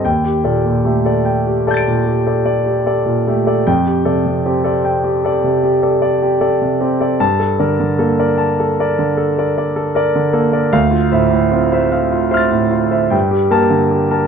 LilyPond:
<<
  \new Staff \with { instrumentName = "Grand piano" } { \time 9/8 \key g \minor \tempo 4. = 50 << { g''8 r4. <a'' g''' a''' d''''>2~ <a'' g''' a''' d''''>8 | g''8 r1 | a''8 r1 | f''8 r4. <c''' f''' a'''>4 r8 a''16 r8. | } \\ { r16 g'16 <a' d''>16 bes,16 g'16 <a' d''>16 g''16 g'16 <a' d''>16 bes,16 g'16 <a' d''>16 d''16 g'16 <a' d''>16 bes,16 g'16 <a' d''>16 | r16 g'16 <a' d''>16 c16 g'16 <a' d''>16 g''16 g'16 <a' d''>16 c16 g'16 <a' d''>16 d''16 g'16 <a' d''>16 c16 g'16 <a' d''>16 | r16 a'16 <bes' d''>16 d16 a'16 <bes' d''>16 a''16 a'16 <bes' d''>16 d16 a'16 <bes' d''>16 d''16 a'16 <bes' d''>16 d16 a'16 <bes' d''>16 | r16 f'16 <c'' e''>16 a,16 f'16 <c'' e''>16 f''16 f'16 <c'' e''>16 a,16 f'16 <c'' e''>16 g''16 g'16 bes'16 d16 g'16 <bes' a''>16 | } >> }
  \new Staff \with { instrumentName = "Grand piano" } { \clef bass \time 9/8 \key g \minor ees,8 bes,8 a4 r2 a8 | f,8 c8 c'4 r2 c'8 | g,8 d8 bes4 r2 bes8 | d,8 a,8 c'4 r4 g,8 bes4 | }
>>